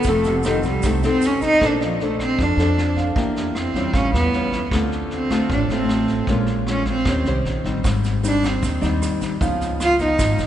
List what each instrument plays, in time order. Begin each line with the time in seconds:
Already playing: grand piano F#5
0.03 upright bass F1, nylon-string guitar C4, kick, snare, shaker
0.08 nylon-string guitar F3 D#4 A4, cello A3
0.24 cello C3, snare, shaker
0.43 cello D#3, nylon-string guitar C4 D#4 A4, cross-stick, snare, shaker
0.63 upright bass C2, cello G3, kick, snare, shaker
0.83 upright bass C2, nylon-string guitar C3 C4 D#4 A4, cello A3, kick, cross-stick, snare, shaker
1.03 nylon-string guitar C4 D#4 A4, cello C4, snare, shaker
1.22 snare, shaker
1.26 cello C#4
1.41 cello D#4, kick, snare, shaker
1.61 upright bass A#1, nylon-string guitar A#3 D4 A4 C5, kick, cross-stick, snare
1.65 cello D4
1.80 cello F3, grand piano D5, snare
2.00 cello A3, nylon-string guitar D4 A4 C5, snare
2.19 cello C4, kick, cross-stick, snare
2.39 upright bass F2, nylon-string guitar F3, cello D4, kick, snare
2.57 upright bass F2, nylon-string guitar D4 A4 C5, snare
2.78 cross-stick, snare
2.97 grand piano F5, kick, snare
3.16 upright bass E2, nylon-string guitar E3 A#3 D4 G4, kick, snare
3.36 snare
3.55 cello C4, cross-stick, snare
3.74 nylon-string guitar G3 C#4 F4, kick, snare
3.93 upright bass A1, nylon-string guitar A2, cello C#4, grand piano F5, kick, cross-stick, snare
4.13 upright bass E2, cello B3, snare
4.33 nylon-string guitar G3 C#4 F4, snare
4.52 kick, snare
4.71 upright bass D2, nylon-string guitar D3 A3 C4 F4, kick, cross-stick, snare
4.92 snare
5.11 cello C4, snare
5.30 nylon-string guitar A3 C4 F4, kick, cross-stick, snare
5.50 upright bass A1, nylon-string guitar A2, cello D4, kick, snare
5.69 upright bass A1, nylon-string guitar A3 C4 F4, cello C4, snare
5.89 cross-stick, snare
6.08 kick, snare
6.27 upright bass A#1, nylon-string guitar A#2 G#3 C#4 F4, kick, snare
6.46 snare
6.67 nylon-string guitar G#3 C#4 F4, cross-stick, snare
6.71 cello C#4
6.85 cello C4, kick, snare
7.05 upright bass D#2, nylon-string guitar D#3 C#4 G4 C5, kick, cross-stick, snare
7.25 upright bass C2, nylon-string guitar C#4 G4 C5, snare
7.45 upright bass A#1, snare
7.65 upright bass A1, nylon-string guitar G3 C4 D#4, kick, snare
7.84 upright bass G#1, nylon-string guitar G#2, kick, cross-stick, snare, shaker
8.04 snare, shaker
8.23 nylon-string guitar G3 C4 D#4, snare, shaker
8.28 cello D4
8.43 cello C4, kick, cross-stick, snare, shaker
8.62 upright bass D#2, nylon-string guitar D#3, kick, snare, shaker
8.81 upright bass D#2, nylon-string guitar G3 C4 D#4, grand piano D#5, snare, shaker
9.02 cross-stick, snare, shaker
9.21 kick, snare, shaker
9.41 upright bass C#2, nylon-string guitar C#3 F3 B3 D#4, grand piano F5, kick, snare, shaker
9.61 snare, shaker
9.80 cello F4, cross-stick, snare, shaker
9.99 nylon-string guitar F3 B3 D#4, cello D#4, kick, snare, shaker
10.19 upright bass G#1, nylon-string guitar G#2, kick, cross-stick, snare, shaker
10.38 upright bass G#1, snare, shaker